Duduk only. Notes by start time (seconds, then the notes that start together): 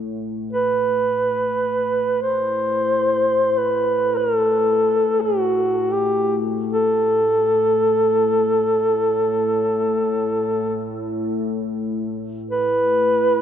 0.53 B4
2.22 C5
3.57 B4
4.17 A#4
4.36 A4
5.21 F#4
5.93 G4
6.73 A4
12.51 B4